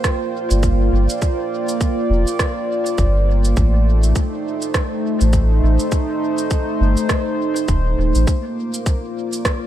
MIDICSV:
0, 0, Header, 1, 5, 480
1, 0, Start_track
1, 0, Key_signature, -2, "minor"
1, 0, Tempo, 588235
1, 994, Time_signature, 4, 2, 24, 8
1, 7889, End_track
2, 0, Start_track
2, 0, Title_t, "Synth texture"
2, 0, Program_c, 0, 99
2, 0, Note_on_c, 0, 72, 84
2, 6758, Note_on_c, 0, 86, 86
2, 6769, Note_off_c, 0, 72, 0
2, 7889, Note_off_c, 0, 86, 0
2, 7889, End_track
3, 0, Start_track
3, 0, Title_t, "Analog synth pad"
3, 0, Program_c, 1, 89
3, 0, Note_on_c, 1, 58, 72
3, 0, Note_on_c, 1, 65, 74
3, 0, Note_on_c, 1, 72, 87
3, 0, Note_on_c, 1, 74, 81
3, 0, Note_on_c, 1, 79, 77
3, 623, Note_off_c, 1, 72, 0
3, 2909, Note_on_c, 1, 57, 90
3, 2913, Note_off_c, 1, 58, 0
3, 3137, Note_on_c, 1, 63, 89
3, 3848, Note_on_c, 1, 72, 94
3, 4466, Note_off_c, 1, 65, 0
3, 4468, Note_off_c, 1, 74, 0
3, 6752, Note_off_c, 1, 57, 0
3, 6752, Note_off_c, 1, 79, 0
3, 6752, Note_on_c, 1, 58, 89
3, 6753, Note_off_c, 1, 63, 0
3, 6858, Note_on_c, 1, 65, 94
3, 7320, Note_on_c, 1, 74, 90
3, 7889, Note_off_c, 1, 58, 0
3, 7889, Note_off_c, 1, 65, 0
3, 7889, Note_off_c, 1, 72, 0
3, 7889, Note_off_c, 1, 74, 0
3, 7889, End_track
4, 0, Start_track
4, 0, Title_t, "Sub bass"
4, 0, Program_c, 2, 38
4, 414, Note_on_c, 2, 31, 92
4, 735, Note_off_c, 2, 31, 0
4, 753, Note_on_c, 2, 31, 93
4, 878, Note_off_c, 2, 31, 0
4, 1712, Note_on_c, 2, 29, 102
4, 1837, Note_off_c, 2, 29, 0
4, 2433, Note_on_c, 2, 31, 82
4, 2895, Note_off_c, 2, 31, 0
4, 2912, Note_on_c, 2, 33, 80
4, 3374, Note_off_c, 2, 33, 0
4, 4252, Note_on_c, 2, 33, 94
4, 4574, Note_off_c, 2, 33, 0
4, 4592, Note_on_c, 2, 33, 93
4, 4717, Note_off_c, 2, 33, 0
4, 5553, Note_on_c, 2, 31, 101
4, 5678, Note_off_c, 2, 31, 0
4, 6269, Note_on_c, 2, 27, 94
4, 6488, Note_off_c, 2, 27, 0
4, 6511, Note_on_c, 2, 27, 84
4, 6636, Note_off_c, 2, 27, 0
4, 6651, Note_on_c, 2, 33, 93
4, 6740, Note_off_c, 2, 33, 0
4, 7889, End_track
5, 0, Start_track
5, 0, Title_t, "Drums"
5, 33, Note_on_c, 9, 37, 82
5, 33, Note_on_c, 9, 82, 37
5, 34, Note_on_c, 9, 36, 100
5, 115, Note_off_c, 9, 37, 0
5, 115, Note_off_c, 9, 82, 0
5, 116, Note_off_c, 9, 36, 0
5, 414, Note_on_c, 9, 82, 46
5, 495, Note_off_c, 9, 82, 0
5, 513, Note_on_c, 9, 82, 39
5, 514, Note_on_c, 9, 36, 100
5, 594, Note_off_c, 9, 82, 0
5, 596, Note_off_c, 9, 36, 0
5, 894, Note_on_c, 9, 82, 50
5, 976, Note_off_c, 9, 82, 0
5, 993, Note_on_c, 9, 82, 35
5, 995, Note_on_c, 9, 36, 95
5, 1075, Note_off_c, 9, 82, 0
5, 1076, Note_off_c, 9, 36, 0
5, 1375, Note_on_c, 9, 82, 50
5, 1457, Note_off_c, 9, 82, 0
5, 1475, Note_on_c, 9, 36, 95
5, 1475, Note_on_c, 9, 82, 39
5, 1556, Note_off_c, 9, 36, 0
5, 1557, Note_off_c, 9, 82, 0
5, 1855, Note_on_c, 9, 82, 48
5, 1937, Note_off_c, 9, 82, 0
5, 1953, Note_on_c, 9, 37, 85
5, 1953, Note_on_c, 9, 82, 37
5, 1954, Note_on_c, 9, 36, 98
5, 2035, Note_off_c, 9, 37, 0
5, 2035, Note_off_c, 9, 82, 0
5, 2036, Note_off_c, 9, 36, 0
5, 2335, Note_on_c, 9, 82, 49
5, 2416, Note_off_c, 9, 82, 0
5, 2432, Note_on_c, 9, 82, 39
5, 2434, Note_on_c, 9, 36, 94
5, 2513, Note_off_c, 9, 82, 0
5, 2515, Note_off_c, 9, 36, 0
5, 2813, Note_on_c, 9, 82, 49
5, 2894, Note_off_c, 9, 82, 0
5, 2910, Note_on_c, 9, 82, 38
5, 2913, Note_on_c, 9, 36, 97
5, 2992, Note_off_c, 9, 82, 0
5, 2994, Note_off_c, 9, 36, 0
5, 3292, Note_on_c, 9, 82, 50
5, 3373, Note_off_c, 9, 82, 0
5, 3390, Note_on_c, 9, 82, 41
5, 3392, Note_on_c, 9, 36, 90
5, 3472, Note_off_c, 9, 82, 0
5, 3473, Note_off_c, 9, 36, 0
5, 3770, Note_on_c, 9, 82, 49
5, 3851, Note_off_c, 9, 82, 0
5, 3870, Note_on_c, 9, 37, 81
5, 3870, Note_on_c, 9, 82, 38
5, 3871, Note_on_c, 9, 36, 100
5, 3952, Note_off_c, 9, 36, 0
5, 3952, Note_off_c, 9, 37, 0
5, 3952, Note_off_c, 9, 82, 0
5, 4250, Note_on_c, 9, 82, 50
5, 4332, Note_off_c, 9, 82, 0
5, 4348, Note_on_c, 9, 82, 43
5, 4350, Note_on_c, 9, 36, 93
5, 4430, Note_off_c, 9, 82, 0
5, 4432, Note_off_c, 9, 36, 0
5, 4729, Note_on_c, 9, 82, 50
5, 4810, Note_off_c, 9, 82, 0
5, 4828, Note_on_c, 9, 82, 39
5, 4830, Note_on_c, 9, 36, 96
5, 4909, Note_off_c, 9, 82, 0
5, 4912, Note_off_c, 9, 36, 0
5, 5208, Note_on_c, 9, 82, 52
5, 5289, Note_off_c, 9, 82, 0
5, 5308, Note_on_c, 9, 82, 41
5, 5311, Note_on_c, 9, 36, 95
5, 5390, Note_off_c, 9, 82, 0
5, 5392, Note_off_c, 9, 36, 0
5, 5688, Note_on_c, 9, 82, 52
5, 5770, Note_off_c, 9, 82, 0
5, 5788, Note_on_c, 9, 37, 83
5, 5788, Note_on_c, 9, 82, 40
5, 5790, Note_on_c, 9, 36, 103
5, 5869, Note_off_c, 9, 37, 0
5, 5869, Note_off_c, 9, 82, 0
5, 5872, Note_off_c, 9, 36, 0
5, 6169, Note_on_c, 9, 82, 50
5, 6251, Note_off_c, 9, 82, 0
5, 6268, Note_on_c, 9, 82, 43
5, 6271, Note_on_c, 9, 36, 99
5, 6350, Note_off_c, 9, 82, 0
5, 6352, Note_off_c, 9, 36, 0
5, 6650, Note_on_c, 9, 82, 50
5, 6732, Note_off_c, 9, 82, 0
5, 6750, Note_on_c, 9, 82, 39
5, 6752, Note_on_c, 9, 36, 103
5, 6832, Note_off_c, 9, 82, 0
5, 6834, Note_off_c, 9, 36, 0
5, 7131, Note_on_c, 9, 82, 54
5, 7213, Note_off_c, 9, 82, 0
5, 7231, Note_on_c, 9, 82, 42
5, 7232, Note_on_c, 9, 36, 102
5, 7313, Note_off_c, 9, 36, 0
5, 7313, Note_off_c, 9, 82, 0
5, 7611, Note_on_c, 9, 82, 52
5, 7693, Note_off_c, 9, 82, 0
5, 7711, Note_on_c, 9, 36, 98
5, 7713, Note_on_c, 9, 37, 86
5, 7713, Note_on_c, 9, 82, 41
5, 7793, Note_off_c, 9, 36, 0
5, 7794, Note_off_c, 9, 37, 0
5, 7794, Note_off_c, 9, 82, 0
5, 7889, End_track
0, 0, End_of_file